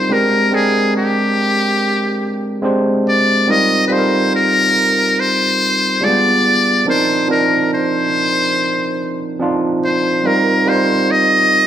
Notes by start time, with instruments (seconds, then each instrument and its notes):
Already playing: tine electric piano G3 C4 D#4 F4 A#4, muted trumpet C5
0.09 tine electric piano G#3 C4 D4 G4 A#4, muted trumpet A#4
0.51 tine electric piano G#3 C4 D4 A#4 G5, muted trumpet G#4
0.97 muted trumpet G4
2.62 tine electric piano G#3 C4 D4 G4 C5
3.08 muted trumpet D5
3.47 tine electric piano G3 C4 D#4 F4 A#4, muted trumpet D#5
3.88 tine electric piano G3 C4 D#4 F4, muted trumpet B4
3.92 tine electric piano A4, muted trumpet C5
3.98 tine electric piano A#4
4.35 muted trumpet A#4
5.20 muted trumpet C5
6.01 tine electric piano G3 G#3 D4 F4 G#4, muted trumpet D5
6.08 tine electric piano B3
6.85 tine electric piano F3 C4 D4 D#4 A#4, muted trumpet C5
7.28 tine electric piano F3 C4 D4 D#4 A#4, muted trumpet A#4
7.74 muted trumpet C5
9.39 tine electric piano F3 C4 D4 D#4 F4
9.84 muted trumpet C5
10.24 tine electric piano G3 C4 D#4 F4 A#4, muted trumpet A#4
10.66 tine electric piano G3 C4 D#4 F4 A#4, muted trumpet C5
11.11 muted trumpet D#5